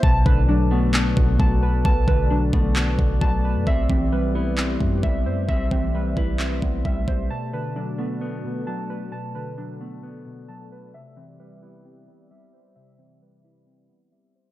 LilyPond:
<<
  \new Staff \with { instrumentName = "Synth keys" } { \time 4/4 \key b \phrygian \tempo 4 = 132 a''8 b'8 d'8 b4 b,8 a''8 b'8 | a''8 b'8 d'8 b4 b,8 a''8 b'8 | e''8 c'8 b'8 e'4 g8 e''8 c''8 | e''8 c'8 b'8 e'4 b8 e''8 c''8 |
a''8 b'8 d'8 b4 b,8 a''8 b'8 | a''8 b'8 d'8 b4 b,8 a''8 b'8 | e''8 c'8 b'8 e'4 g8 e''8 c''8 | e''8 c'8 b'8 e'4 b8 e''8 c''8 | }
  \new Staff \with { instrumentName = "Ambient pad" } { \time 4/4 \key b \phrygian << { <fis' a' d''>1~ | <fis' a' d''>1 | <g' e''>1~ | <g' e''>1 |
<fis' a'>1~ | <fis' a'>1 | <g' d'' e''>1~ | <g' d'' e''>1 | } \\ { a1~ | a1~ | a1~ | a1~ |
a1~ | a1 | g1~ | g1 | } >> }
  \new Staff \with { instrumentName = "Clean electric guitar" } { \clef bass \time 4/4 \key b \phrygian b,8 d8 fis8 a8 b4 fis4 | b,8 d8 fis8 a8 b4 fis4 | c'8 e8 g8 b8 c'4 g4 | c'8 e8 g8 b'8 c'4 g4 |
b,8 d8 fis8 a8 b4 fis4 | b,8 d8 fis8 a8 b4 fis4 | c8 e8 g8 b8 c'4 g4 | c8 e8 g8 b'8 c'4 g4 | }
  \new Staff \with { instrumentName = "808-style bass" } { \clef bass \time 4/4 \key b \phrygian b,,8 b,,2 b,,8 b,,4 | b,,8 b,,4 b,,4 b,,8 b,,8. fis,16 | b,,8 b,,2 fis,8 b,,8 fis,8 | b,,8 b,,4 b,,4 b,,8 b,,8 b,,8 |
r1 | r1 | r1 | r1 | }
  \new DrumStaff \with { instrumentName = "Drums" } \drummode { \time 4/4 bd8 bd8 r4 hc8 bd8 bd4 | bd8 bd8 r8 bd8 hc8 bd8 bd4 | bd8 bd8 r4 hc8 bd8 bd4 | bd8 bd8 r8 bd8 hc8 bd8 bd8 bd8 |
r4 r4 r4 r4 | r4 r4 r4 r4 | r4 r4 r4 r4 | r4 r4 r4 r4 | }
>>